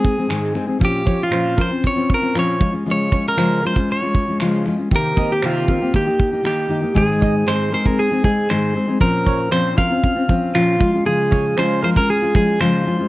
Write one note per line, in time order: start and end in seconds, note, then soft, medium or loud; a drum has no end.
0.00 0.18 G#3 soft
0.00 0.18 C4 soft
0.00 0.17 D#4 soft
0.00 0.17 G#4 medium
0.00 0.52 G#4 medium
0.05 kick medium
0.17 0.28 G#3 soft
0.17 0.28 C4 soft
0.17 0.28 D#4 soft
0.17 0.29 G#4 soft
0.17 shaker soft
0.28 0.55 G#2 medium
0.28 0.55 D#3 medium
0.28 0.53 G#3 medium
0.28 0.54 C4 medium
0.28 0.55 D#4 medium
0.28 0.55 G#4 medium
0.28 finger snap loud
0.28 shaker medium
0.43 shaker soft
0.54 0.67 G#3 medium
0.54 0.66 C4 medium
0.54 0.66 D#4 medium
0.54 0.66 G#4 medium
0.54 finger snap soft
0.67 0.79 G#3 soft
0.67 0.79 C4 soft
0.67 0.80 D#4 soft
0.67 0.80 G#4 soft
0.67 shaker soft
0.79 1.06 A#2 medium
0.79 1.03 F3 medium
0.79 1.04 C4 medium
0.79 1.04 C#4 medium
0.79 1.06 F4 medium
0.79 kick medium
0.79 shaker medium
0.85 1.22 G4 medium
0.95 shaker soft
1.04 1.29 F3 medium
1.04 1.30 C4 medium
1.04 1.30 C#4 medium
1.04 1.30 F4 medium
1.04 1.19 C#5 medium
1.04 kick medium
1.04 shaker soft
1.19 1.61 F4 medium
1.19 shaker soft
1.30 1.57 A#2 medium
1.30 1.55 F3 medium
1.30 1.56 C4 medium
1.30 1.56 C#4 medium
1.30 1.57 F4 medium
1.30 1.57 C5 medium
1.30 finger snap loud
1.30 shaker medium
1.45 shaker soft
1.56 1.70 F3 soft
1.56 1.69 C4 medium
1.56 1.70 C#4 medium
1.56 1.68 F4 medium
1.56 1.70 A#4 medium
1.56 kick medium
1.61 1.86 C5 medium
1.70 1.96 C4 soft
1.70 1.97 C#4 soft
1.70 1.94 F4 soft
1.70 shaker soft
1.84 2.12 C#5 medium
1.84 kick medium
1.84 shaker soft
1.96 2.22 C4 soft
1.96 2.22 C#4 soft
1.96 2.20 F4 soft
1.96 shaker soft
2.09 kick medium
2.09 shaker soft
2.14 2.38 A#4 medium
2.21 2.34 C4 soft
2.21 2.33 C#4 soft
2.21 2.34 F4 soft
2.21 shaker soft
2.34 2.60 A#2 medium
2.34 2.58 F3 medium
2.34 2.60 C4 medium
2.34 2.59 C#4 medium
2.34 2.60 F4 medium
2.34 finger snap loud
2.34 shaker medium
2.39 2.73 C#5 medium
2.48 shaker soft
2.59 2.73 F3 medium
2.59 2.73 G#3 medium
2.59 2.71 C#4 medium
2.59 2.71 F4 medium
2.59 kick medium
2.72 2.85 G#3 soft
2.72 2.85 C#4 soft
2.72 2.86 F4 soft
2.72 shaker soft
2.85 3.11 C#3 medium
2.85 3.10 F3 medium
2.85 3.10 G#3 medium
2.85 3.11 C#4 medium
2.85 3.11 F4 medium
2.85 shaker medium
2.91 3.28 C#5 medium
3.00 shaker soft
3.11 3.36 F3 soft
3.11 3.36 G#3 medium
3.11 3.37 C#4 medium
3.11 3.37 F4 medium
3.11 3.24 C#5 medium
3.11 kick medium
3.25 3.66 A#4 medium
3.25 shaker soft
3.37 3.63 C#3 medium
3.37 3.62 F3 medium
3.37 3.62 G#3 medium
3.37 3.63 C#4 medium
3.37 3.63 F4 medium
3.37 3.62 C5 medium
3.37 finger snap loud
3.37 shaker medium
3.51 shaker medium
3.63 3.76 F3 soft
3.63 3.76 G#3 medium
3.63 3.76 C#4 medium
3.63 3.75 F4 medium
3.63 3.75 A#4 medium
3.63 3.91 C5 medium
3.76 4.02 G#3 soft
3.76 4.02 C#4 soft
3.76 4.01 F4 soft
3.76 kick medium
3.76 shaker soft
3.89 4.41 C#5 medium
3.89 shaker medium
4.02 4.28 G#3 soft
4.02 4.28 C#4 soft
4.02 4.26 F4 soft
4.02 shaker medium
4.15 kick medium
4.27 4.40 G#3 soft
4.27 4.40 C#4 soft
4.27 4.40 F4 soft
4.27 shaker soft
4.40 4.66 C#3 medium
4.40 4.64 F3 medium
4.40 4.65 G#3 medium
4.40 4.65 C#4 medium
4.40 4.67 F4 medium
4.40 4.63 C5 medium
4.40 finger snap medium
4.40 shaker medium
4.53 shaker soft
4.65 4.78 F3 medium
4.65 4.78 G#3 medium
4.65 4.78 C#4 medium
4.65 4.76 F4 medium
4.65 finger snap soft
4.78 4.91 G#3 soft
4.78 4.91 C#4 soft
4.78 4.91 F4 soft
4.78 shaker soft
4.91 5.17 C3 medium
4.91 5.14 D#3 medium
4.91 5.15 A#3 medium
4.91 5.16 C4 medium
4.91 5.16 G4 medium
4.91 kick medium
4.91 shaker medium
4.96 5.33 A#4 loud
5.05 shaker soft
5.16 5.42 D#3 soft
5.16 5.42 A#3 medium
5.16 5.43 C4 medium
5.16 5.43 G4 medium
5.16 5.29 D#5 medium
5.16 kick medium
5.16 shaker soft
5.30 5.45 G4 medium
5.30 shaker soft
5.42 5.68 C3 medium
5.42 5.67 D#3 medium
5.42 5.68 A#3 medium
5.42 5.68 C4 medium
5.42 5.95 F4 medium
5.42 5.69 G4 medium
5.42 5.67 C5 medium
5.42 finger snap loud
5.42 shaker medium
5.56 shaker soft
5.68 5.81 D#3 medium
5.68 5.81 A#3 medium
5.68 5.81 C4 medium
5.68 5.80 G4 medium
5.68 5.80 A#4 medium
5.68 kick medium
5.81 5.93 A#3 soft
5.81 5.94 C4 soft
5.81 5.94 G4 soft
5.81 shaker soft
5.94 6.07 D#3 medium
5.94 6.07 A#3 medium
5.94 6.05 D#4 medium
5.94 6.05 G4 medium
5.94 6.45 G4 medium
5.94 kick medium
5.94 shaker medium
6.06 6.32 A#3 soft
6.06 6.32 D#4 soft
6.06 6.30 G4 medium
6.06 shaker soft
6.20 kick medium
6.32 6.42 A#3 soft
6.32 6.43 D#4 soft
6.32 6.44 G4 soft
6.32 shaker soft
6.43 6.67 D#3 medium
6.43 6.68 A#3 medium
6.43 6.69 D#4 medium
6.43 6.70 G4 medium
6.43 6.97 G4 medium
6.43 finger snap medium
6.43 shaker medium
6.58 shaker soft
6.69 6.83 D#3 medium
6.69 6.82 A#3 medium
6.69 6.81 D#4 medium
6.69 6.80 G4 medium
6.69 shaker soft
6.82 6.95 A#3 soft
6.82 6.94 D#4 soft
6.82 6.95 G4 medium
6.82 shaker soft
6.94 7.45 G#2 medium
6.94 7.46 D#3 medium
6.94 7.46 G#3 medium
6.94 7.47 C4 medium
6.94 7.47 D#4 medium
6.94 7.47 G#4 medium
6.94 7.50 G#4 medium
6.94 kick medium
6.94 shaker medium
7.10 shaker soft
7.21 7.34 D#5 medium
7.21 kick medium
7.36 shaker soft
7.46 7.72 G#2 medium
7.46 7.73 D#3 medium
7.46 7.70 G#3 medium
7.46 7.71 C4 medium
7.46 7.71 D#4 medium
7.46 7.72 G#4 medium
7.46 7.72 C5 medium
7.46 7.73 C5 medium
7.46 finger snap loud
7.46 shaker medium
7.61 shaker medium
7.71 7.85 G#3 medium
7.71 7.86 C4 medium
7.71 7.84 D#4 medium
7.71 7.84 G#4 medium
7.71 7.85 A#4 medium
7.71 7.86 C5 medium
7.71 shaker soft
7.85 8.11 G#3 soft
7.85 8.11 C4 soft
7.85 8.10 D#4 soft
7.85 8.10 G#4 soft
7.85 7.99 A#4 medium
7.85 kick medium
7.85 shaker soft
7.99 8.23 G#4 medium
7.99 shaker medium
8.11 8.22 G#3 soft
8.11 8.22 C4 soft
8.11 8.23 D#4 soft
8.11 8.24 G#4 medium
8.11 shaker medium
8.23 8.49 G#3 medium
8.23 8.49 C4 medium
8.23 8.49 D#4 medium
8.23 8.51 G#4 medium
8.23 8.50 G#4 medium
8.23 kick medium
8.37 shaker soft
8.49 8.75 G#2 medium
8.49 8.76 D#3 medium
8.49 8.73 G#3 medium
8.49 8.75 C4 medium
8.49 8.75 D#4 medium
8.49 8.75 G#4 medium
8.49 8.98 C5 medium
8.49 finger snap medium
8.49 shaker medium
8.63 shaker soft
8.75 8.88 G#3 medium
8.75 8.87 C4 medium
8.75 8.87 D#4 medium
8.75 8.86 G#4 medium
8.75 shaker soft
8.87 8.99 G#3 soft
8.87 9.00 C4 soft
8.87 9.00 D#4 soft
8.87 9.01 G#4 soft
8.87 shaker soft
9.00 9.50 A#2 medium
9.00 9.51 F3 medium
9.00 9.51 C4 medium
9.00 9.51 C#4 medium
9.00 9.52 F4 medium
9.00 9.52 A#4 medium
9.00 kick medium
9.00 shaker medium
9.14 shaker soft
9.26 9.39 C#5 medium
9.26 kick medium
9.26 shaker soft
9.40 shaker soft
9.51 9.77 A#2 medium
9.51 9.75 F3 medium
9.51 9.76 C4 medium
9.51 9.76 C#4 medium
9.51 9.78 F4 medium
9.51 9.76 C5 medium
9.51 9.77 C5 medium
9.51 finger snap loud
9.51 shaker medium
9.66 shaker medium
9.76 9.90 F3 medium
9.76 9.90 C4 medium
9.76 9.90 C#4 medium
9.76 9.88 F4 medium
9.76 9.90 A#4 medium
9.76 10.57 F5 medium
9.76 kick medium
9.76 shaker soft
9.89 10.15 C4 soft
9.89 10.16 C#4 soft
9.89 10.14 F4 soft
9.89 shaker soft
10.04 kick medium
10.04 shaker medium
10.15 10.28 C4 medium
10.15 10.27 C#4 soft
10.15 10.29 F4 soft
10.15 shaker medium
10.28 10.53 F3 medium
10.28 10.54 C4 medium
10.28 10.54 C#4 medium
10.28 10.54 F4 medium
10.28 kick medium
10.28 shaker soft
10.42 shaker soft
10.54 10.80 A#2 medium
10.54 10.77 F3 medium
10.54 10.80 C4 medium
10.54 10.79 C#4 medium
10.54 11.06 F4 medium
10.54 10.79 F4 medium
10.54 finger snap loud
10.54 shaker medium
10.67 shaker soft
10.79 10.93 F3 medium
10.79 10.93 G#3 medium
10.79 10.93 C#4 medium
10.79 10.92 F4 medium
10.79 kick medium
10.79 shaker soft
10.93 11.05 G#3 soft
10.93 11.05 C#4 soft
10.93 11.05 F4 medium
10.93 shaker soft
11.05 11.56 C#3 medium
11.05 11.56 F3 medium
11.05 11.56 G#3 medium
11.05 11.56 C#4 medium
11.05 11.57 F4 medium
11.05 11.59 G#4 medium
11.05 shaker medium
11.20 shaker soft
11.31 11.44 C#5 medium
11.31 kick medium
11.31 shaker soft
11.46 shaker soft
11.57 11.83 C#3 medium
11.57 11.81 F3 medium
11.57 11.82 G#3 medium
11.57 11.83 C#4 medium
11.57 11.84 F4 medium
11.57 11.81 C5 medium
11.57 11.82 C5 medium
11.57 finger snap loud
11.57 shaker medium
11.71 shaker medium
11.83 11.96 F3 medium
11.83 11.96 G#3 medium
11.83 11.96 C#4 medium
11.83 11.94 F4 medium
11.83 11.95 A#4 medium
11.83 11.89 C5 medium
11.83 shaker medium
11.96 12.23 G#3 soft
11.96 12.22 C#4 soft
11.96 12.21 F4 medium
11.96 12.09 A#4 medium
11.96 kick medium
11.96 shaker soft
12.10 12.35 G#4 medium
12.10 shaker medium
12.22 12.34 G#3 soft
12.22 12.35 C#4 soft
12.22 12.35 F4 medium
12.22 shaker medium
12.35 12.59 F3 medium
12.35 12.59 G#3 medium
12.35 12.60 C#4 medium
12.35 12.60 F4 medium
12.35 12.59 G#4 medium
12.35 kick medium
12.48 shaker soft
12.60 12.85 C#3 medium
12.60 12.84 F3 medium
12.60 12.85 G#3 medium
12.60 12.86 C#4 medium
12.60 12.86 F4 medium
12.60 13.08 C5 medium
12.60 finger snap loud
12.60 shaker medium
12.73 shaker soft
12.85 12.98 F3 medium
12.85 12.99 G#3 medium
12.85 12.98 C#4 medium
12.85 12.97 F4 medium
12.85 shaker medium
12.99 13.08 G#3 soft
12.99 13.08 C#4 soft
12.99 13.08 F4 medium
12.99 shaker soft